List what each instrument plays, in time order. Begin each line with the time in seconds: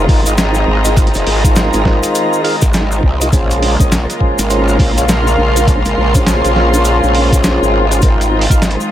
Already playing: string section D#3 G#3 C4 F4, analog synth pad G#4 D#5 A#5
0.08 wobble bass G#1, tonewheel organ D#4 F4 A#4 C5, kick, open hi-hat
0.26 tonewheel organ D#4 F4 A#4 D#5, closed hi-hat, cabasa
0.38 snare, closed hi-hat, cabasa
0.54 cabasa
0.68 wobble bass G#1
0.85 closed hi-hat, cabasa
0.97 tonewheel organ D#4 F4 A#4 C5, kick, closed hi-hat, cabasa
1.07 closed hi-hat
1.14 wobble bass F1, closed hi-hat, cabasa
1.27 wobble bass G#1, open hi-hat
1.44 tonewheel organ D#4 F4 A#4 C5, kick, closed hi-hat, cabasa
1.56 snare, closed hi-hat, cabasa
1.73 wobble bass G#1, closed hi-hat, cabasa
1.85 tonewheel organ D#4 F4 A#4 C5, kick, snare
2.03 closed hi-hat, cabasa
2.15 closed hi-hat, cabasa
2.33 cabasa
2.44 tonewheel organ D#4 F4 A#4 F5, open hi-hat
2.62 wobble bass G#1, kick, closed hi-hat, cabasa
2.73 snare, closed hi-hat, cabasa
2.92 cabasa
3.03 wobble bass C2, kick
3.21 tonewheel organ D#4 F4 A#4 D#5, closed hi-hat, cabasa
3.32 wobble bass A#1, string section C#3 A#3 F4, tonewheel organ C#4 F4 G#4 C5, analog synth pad A#4, kick, closed hi-hat, cabasa
3.51 closed hi-hat, cabasa
3.63 analog synth pad F5, open hi-hat
3.80 wobble bass A#1, tonewheel organ C#4 F4 G#4 D#5, kick, closed hi-hat, cabasa
3.91 analog synth pad C6, snare, closed hi-hat, cabasa
4.10 closed hi-hat, cabasa
4.21 tonewheel organ C#4 F4 G#4 C5, kick
4.38 wobble bass G#1, closed hi-hat, cabasa
4.50 tonewheel organ C#4 F4 G#4 C5, closed hi-hat, cabasa
4.68 cabasa
4.79 wobble bass A#1, tonewheel organ C#4 F4 G#4 C5, kick, open hi-hat
4.98 tonewheel organ C#4 F4 G#4 C#5, closed hi-hat, cabasa
5.08 snare, closed hi-hat, cabasa
5.27 cabasa
5.38 wobble bass A#1
5.56 closed hi-hat, cabasa
5.67 tonewheel organ C#4 F4 G#4 C5, kick, closed hi-hat, cabasa
5.85 wobble bass G#1, closed hi-hat, cabasa
5.98 wobble bass A#1
6.15 tonewheel organ C#4 F4 G#4 C5, kick, closed hi-hat, cabasa
6.27 snare, closed hi-hat, cabasa
6.44 wobble bass A#1, closed hi-hat, cabasa
6.56 tonewheel organ C#4 F4 G#4 C5, snare
6.74 closed hi-hat, cabasa
6.85 closed hi-hat, cabasa
7.03 wobble bass A#1, cabasa
7.15 open hi-hat
7.32 kick, closed hi-hat, cabasa
7.44 snare, closed hi-hat, cabasa
7.62 wobble bass G#1, cabasa
7.91 tonewheel organ C#4 F4 G#4 C5, closed hi-hat, cabasa
8.02 wobble bass G#1, string section D#3 C4, analog synth pad G#3, tonewheel organ D#4 F4 A#4 C5, kick, closed hi-hat, cabasa
8.15 analog synth pad D#5
8.21 closed hi-hat, cabasa
8.41 open hi-hat
8.50 wobble bass G#1, tonewheel organ D#4 F4 A#4 F5, kick, closed hi-hat, cabasa
8.62 analog synth pad A#5, snare, closed hi-hat, cabasa
8.71 closed hi-hat
8.80 cabasa